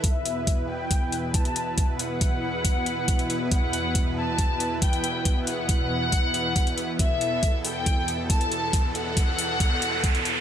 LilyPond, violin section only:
\new Staff \with { instrumentName = "Violin section" } { \time 4/4 \key e \minor \tempo 4 = 138 e''4. g''4. a''4~ | a''8 fis''2.~ fis''8 | fis''4. a''4. g''4~ | g''8 fis''2.~ fis''8 |
e''4. g''4. a''4~ | a''8 fis''2.~ fis''8 | }